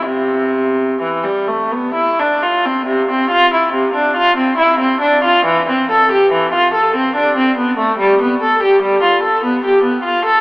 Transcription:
X:1
M:3/4
L:1/16
Q:1/4=71
K:C
V:1 name="Viola"
C,4 E, G, A, B, E D F C | C, C F E C, D F C E C D F | E, C A G E, F A C D C B, A, | G, B, A G G, F A B, G B, F A |]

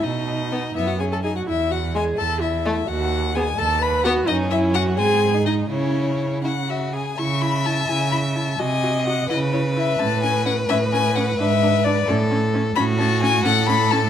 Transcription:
X:1
M:6/8
L:1/16
Q:3/8=86
K:Bmix
V:1 name="Violin"
d6 e f g a g f | e2 f2 g2 a2 e4 | f4 g2 a2 b2 f2 | [K:C#m] d2 e2 f2 g4 d2 |
c6 f2 e2 g2 | c'2 b2 a2 g2 b2 a2 | g4 f2 d2 c2 e2 | a2 g2 f2 e2 g2 f2 |
e4 =d2 z6 | [K:Alyd] b2 a2 g2 f2 b2 a2 |]
V:2 name="Viola"
D6 E F G A G F | E2 F2 G2 A2 E4 | F4 G2 A2 B2 F2 | [K:C#m] D2 E2 F2 G4 D2 |
C6 z6 | E2 E2 E2 E2 E2 E2 | F2 F2 F2 E2 E2 E2 | C2 C2 C2 C2 C2 C2 |
=D2 D2 D2 C2 C2 C2 | [K:Alyd] C2 C2 C2 C2 C2 C2 |]
V:3 name="Violin"
z4 B, z B,2 C2 D2 | z4 G, z4 z A, z | z4 B, z4 z B, z | [K:C#m] C6 ^B,3 D3 |
E6 E2 F2 G2 | e12 | d6 B6- | B12- |
B6 A6 | [K:Alyd] F6 A6 |]
V:4 name="Cello" clef=bass
B,,6 F,,6 | E,,6 E,,6 | D,,6 D,,6 | [K:C#m] F,,6 G,,6 |
C,8- C,2 z2 | C,6 C,6 | ^B,,6 C,6 | A,,6 A,,6 |
G,,6 A,,6 | [K:Alyd] A,,6 A,,6 |]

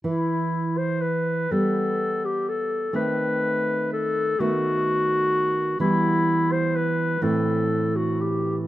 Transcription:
X:1
M:6/8
L:1/16
Q:3/8=42
K:Em
V:1 name="Clarinet"
E3 c B2 A3 G A2 | B4 A2 F6 | E3 c B2 A3 F G2 |]
V:2 name="Nylon-string guitar" clef=bass
E,6 [G,B,]6 | [^D,A,C]6 [D,A,B,]6 | [E,G,B,]6 [A,,E,C]6 |]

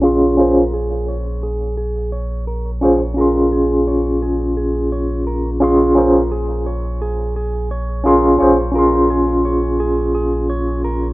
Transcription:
X:1
M:4/4
L:1/8
Q:"Swing 16ths" 1/4=86
K:Bbm
V:1 name="Clean electric guitar"
d B A d A A d B | d B A d A A d B | d B A d A A d B | d B A d A A d B |]
V:2 name="Tine electric piano"
[DFAc'] [DFAc] z6 | [DFAc] [DFAc']6- [DFAc'] | [DFAc'] [DFAc] z4 z [DFAc'] | [DFAc] [DFAc']6- [DFAc'] |]
V:3 name="Sub bass" clef=bass
B,,,8- | B,,,8- | B,,,8 | B,,,8 |]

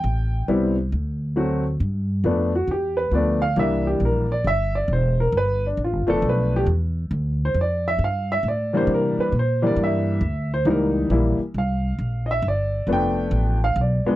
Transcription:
X:1
M:4/4
L:1/8
Q:"Swing" 1/4=135
K:C
V:1 name="Upright piano"
g2 z6 | z3 ^F G B d =f | e G _B d e d c B | B D F A B G z2 |
z c d e f e d c | _B =B c d e3 c | ^A z3 f3 [_e=e] | d2 g3 f d2 |]
V:2 name="Upright piano"
z2 [G,B,CE] z3 [^F,A,C^F] z | z2 [F,A,B,D] z3 [F,A,B,D] z | [E,G,_B,D]3 z4 z | z3 [F,A,B,D]3 z2 |
z6 z [E,G,_B,D]- | [E,G,_B,D]2 z [E,G,B,D]3 z2 | [E,G,^A,_E]2 [=E,G,A,=E] z4 z | z2 [F,A,B,D]3 z2 [F,_A,B,D] |]
V:3 name="Upright bass" clef=bass
A,,,2 C,,2 D,,4 | G,,2 F,,2 E,,2 D,,2 | C,,2 _B,,,2 G,,,2 E,,,2 | G,,,2 (3A,,, G,,, F,,, B,,,2 E,,2 |
D,,2 F,,2 G,,2 A,,2 | C, z _B,,2 G,,2 D,,2 | ^C,,2 ^A,,, z =C,,2 A,,,2 | G,,,2 F,,,2 A,,,2 B,,, z |]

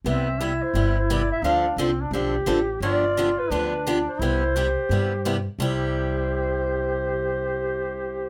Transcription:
X:1
M:4/4
L:1/16
Q:"Swing" 1/4=174
K:C
V:1 name="Clarinet"
e6 c4 c2 d2 e2 | f4 z12 | d6 B2 B4 z2 c2- | c12- c2 z2 |
c16- | c16 |]
V:2 name="Duduk"
C4 E12 | D4 C2 D2 G8 | F8 D8 | E4 G8- G2 z2 |
G16- | G16 |]
V:3 name="Steel-string acoustic guitar"
[C,G,B,EG]2 z2 [C,G,B,EG] z3 [C,G,B,EG]2 z2 [C,G,B,EG] z3 | [D,F,CDA]2 z2 [D,F,CDA] z3 [D,F,CDA]2 z2 [D,F,CDA] z3 | [D,F,B,DG]2 z2 [D,F,B,DG] z3 [D,F,B,DG]2 z2 [D,F,B,DG] z3 | [C,G,B,EG]2 z2 [C,G,B,EG] z3 [C,G,B,EG]2 z2 [C,G,B,EG] z3 |
[C,G,EG]16- | [C,G,EG]16 |]
V:4 name="Upright bass" clef=bass
C,,8 G,,,8 | D,,4 C,,4 B,,,4 A,,,4 | G,,,8 D,,8 | C,,8 G,,8 |
C,,16- | C,,16 |]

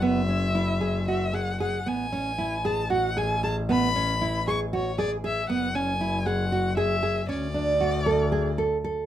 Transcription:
X:1
M:7/8
L:1/8
Q:1/4=115
K:F#m
V:1 name="Violin"
e4 e f f | g3 a f g a | b3 c' c d e | f g2 f2 e2 |
d4- d z2 |]
V:2 name="Nylon-string guitar"
B, C E G F G G | B, C E G F G G | B, C E G F G G | B, C E G F G G |
C D F A G A A |]
V:3 name="Double bass" clef=bass
F,,,6- F,,, | A,,,6- A,,,- | A,,,6- A,,, | F,,,6- F,,, |
D,,6- D,, |]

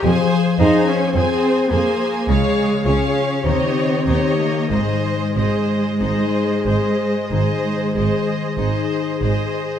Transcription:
X:1
M:4/4
L:1/16
Q:1/4=48
K:Ab
V:1 name="Violin section"
a2 a2 a2 a2 f2 f2 e2 e2 | e2 e2 e2 e2 e2 e2 e2 e2 |]
V:2 name="Violin section"
c2 c2 c2 c2 d2 d2 d2 d2 | c2 c2 c2 c2 c2 c2 c2 c2 |]
V:3 name="Viola section"
A2 A2 A2 A2 A2 A2 G2 G2 | A2 A2 A2 A2 A2 A2 A2 A2 |]
V:4 name="Harp"
F,2 F2 c2 A2 D,2 [Fd]2 E,2 [Ed]2 | A,,2 A,2 E2 c2 E,2 A,2 E2 c2 |]
V:5 name="Cello section"
z2 E D C2 B,2 A,2 D2 C3 B, | A,12 z4 |]
V:6 name="Double bass section" clef=bass
F,,2 F,,2 F,,2 F,,2 D,,2 D,,2 E,,2 E,,2 | A,,,2 A,,,2 A,,,2 A,,,2 A,,,2 A,,,2 A,,,2 A,,,2 |]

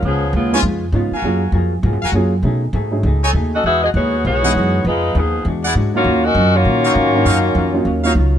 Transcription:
X:1
M:4/4
L:1/8
Q:"Swing" 1/4=199
K:Ebm
V:1 name="Trumpet section"
z3 [Fcda] z3 [GBfa]- | [GBfa]2 z3 [GBfa] z2 | z4 z [^D=A^c^g] z2 | z4 z [=E^G^d^f] z2 |
z4 z [=E^G=d^f] z2 | z4 z [EGdf] z2 | [EGdf] z4 [EGdf] z2 |]
V:2 name="Saxophone section"
[F,CDA]2 [A,CDF]2 z4 | z8 | z6 z [^C^F=A^d] | [=B,^F^G=e] [B,FG^d] [B,FG_d]2 [B,FGd]4 |
[A,EFc]2 [F,CEA]2 z3 [B,F^Fd]- | [B,F^Fd] [DGBe]2 [B,=FGd]4- [B,FGd]- | [B,FGd]6 z2 |]
V:3 name="Grand piano"
z3 [A,CDEF] z2 [A,CDEF] z | [G,B,DFA] z4 z [G,B,DFA] z | [^F,=A,^C^D^G] z2 [F,A,CDG] z4 | z4 z [=E,^G,=B,^D^F]3 |
z6 z [^F,B,DE=f]- | [^F,B,DE=f]2 z4 z [G,B,DEf]- | [G,B,DEf]2 z [G,B,DEF]2 [G,B,DEF] z2 |]
V:4 name="Hollow-body jazz guitar"
[D,A,CF] z [D,A,CF] z [D,A,CF] z [D,A,CF] z | [G,B,FA] z [G,B,FA] z [G,B,FA] z [G,B,FA] z | [=B,,=A,^D^G] z [B,,A,DG] z [B,,A,DG] z [B,,A,DG] z | [=E,^G,^D^F] z [E,G,DF] z [E,G,DF] z [E,G,DF] z |
[F,CEA] z [F,CEA] z [=E,^G,=D^F] z [E,G,DF] z | [E,G,DF] z [E,G,DF] z [E,G,DF] z [E,G,DF] z | [E,G,DF] z [E,G,DF] z [E,G,DF] z [E,G,DF] z |]
V:5 name="Trombone section"
z8 | z8 | z8 | z8 |
z8 | z3 [E,B,D]4- [E,B,D]- | [E,B,D]6 z2 |]
V:6 name="Upright bass" clef=bass
D,,2 E,,2 F,,2 A,, z | G,,2 F,,2 (3A,, G,, F,, G,,2 | =B,,2 ^G,,2 ^C,,2 ^D,,2 | =E,,2 ^D,,2 =B,,,2 ^F,,2 |
F,,2 E,,2 =E,,2 ^G,,2 | E,,2 G,,2 B,,2 A,,2 | G,,2 F,,2 E,,2 D,,2 |]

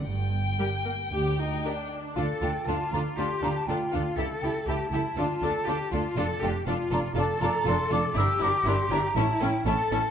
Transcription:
X:1
M:4/4
L:1/16
Q:1/4=120
K:Gm
V:1 name="Flute"
z16 | [K:Dm] f2 g2 a2 b2 c'2 b a g2 f2 | e2 g2 a12 | z2 g2 a2 b2 a2 b2 c'2 d'2 |
e'2 d'2 c'2 b2 a2 g2 a2 a2 |]
V:2 name="Violin section"
g12- g2 z2 | [K:Dm] A2 A2 A2 A2 A2 A2 A2 A2 | A2 A2 A2 A2 A2 A2 A2 A2 | A2 A2 A2 A2 A2 A2 A2 A2 |
B2 B2 B2 B2 A2 A2 A2 A2 |]
V:3 name="Cello section"
G,,4 z4 D,,4 z4 | [K:Dm] A4 F4 G4 F4 | A4 G2 E2 F2 A2 G2 F2 | A2 G2 F4 A8 |
G8 E4 A4 |]
V:4 name="Violin section"
z4 [GB]4 z4 [GB]4 | [K:Dm] F2 F2 F2 F2 F2 F2 F2 F2 | G2 G2 G2 G2 F2 F2 F2 F2 | F2 F2 F2 F2 F2 F2 F2 F2 |
E2 E2 E2 E2 E2 E2 E2 E2 |]
V:5 name="Viola section"
z4 G,2 B,2 G2 E2 D4 | [K:Dm] D2 D2 D2 D2 D2 D2 D2 D2 | E2 E2 E2 E2 D2 D2 D2 D2 | D2 D2 D2 D2 D2 D2 D2 D2 |
D2 D2 D2 D2 ^C2 C2 C2 C2 |]
V:6 name="Double bass section" clef=bass
G,,,4 z4 D,,4 z4 | [K:Dm] D,,2 D,,2 D,,2 D,,2 D,,2 D,,2 D,,2 D,,2 | ^C,,2 C,,2 C,,2 C,,2 D,,2 D,,2 D,,2 D,,2 | F,,,2 F,,,2 F,,,2 F,,,2 F,,,2 F,,,2 F,,,2 F,,,2 |
G,,,2 G,,,2 G,,,2 G,,,2 A,,,2 A,,,2 A,,,2 A,,,2 |]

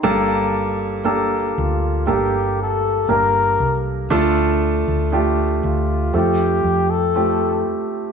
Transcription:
X:1
M:4/4
L:1/16
Q:1/4=59
K:Gm
V:1 name="Flugelhorn"
z6 F2 G2 A2 B3 z | z6 F2 G3 A3 z2 |]
V:2 name="Grand piano"
[B,DGA]4 [B,DGA]4 [B,DGA]4 [B,DGB]4 | [A,DFA]4 [A,DFG]4 [A,CFA]4 [A,CFG]4 |]
V:3 name="Grand piano" clef=bass
G,,6 z8 z2 | D,6 z8 z2 |]
V:4 name="Fingered electric bass" clef=bass
G,,,6 D,,2 G,,,4 G,,,2 C,,2 | D,,3 D,,3 D,,2 F,,2 F,,4 z2 |]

